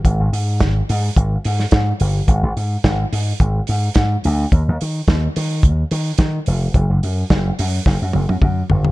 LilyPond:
<<
  \new Staff \with { instrumentName = "Slap bass" } { \clef bass \time 4/4 \key gis \phrygian \tempo 4 = 108 gis,,16 gis,,16 gis,8 gis,,8 gis,8 gis,,8 gis,8 gis,8 g,,8 | gis,,16 gis,,16 gis,8 gis,,8 gis,8 gis,,8 gis,8 gis,8 d,8 | dis,16 dis,16 dis8 dis,8 dis8 dis,8 dis8 dis8 eis,,8 | fis,,16 fis,,16 fis,8 fis,,8 fis,8 fis,,16 fis,16 fis,,16 fis,16 fis,8 g,,8 | }
  \new DrumStaff \with { instrumentName = "Drums" } \drummode { \time 4/4 <hh bd>8 hho8 <hh bd sn>8 hho8 <hh bd>8 hho16 sn16 <hh bd sn>8 hho8 | <hh bd>8 hho8 <hh bd sn>8 hho8 <hh bd>8 hho8 <hh bd sn>8 hho8 | <hh bd>8 hho8 <bd sn>8 hho8 <hh bd>8 hho8 <hh bd sn>8 hho8 | <hh bd>8 hho8 <hh bd sn>8 hho8 <bd sn>8 tommh16 tommh16 <bd toml>8 tomfh16 tomfh16 | }
>>